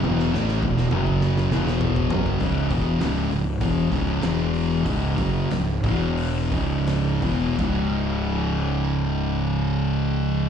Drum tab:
CC |----------------|----------------|----------------|x---------------|
HH |----------------|o-o-o-o-o-o-o-o-|o-o-o-o-o-o-o-o-|----------------|
SD |-ooo-o--oooo----|----o-------o---|----o-------o---|----------------|
T1 |o---------------|----------------|----------------|----------------|
T2 |------o---------|----------------|----------------|----------------|
FT |------------o-o-|----------------|----------------|----------------|
BD |----o--o-----o-o|o-o-----o-o-----|o-o---o---o---o-|o---------------|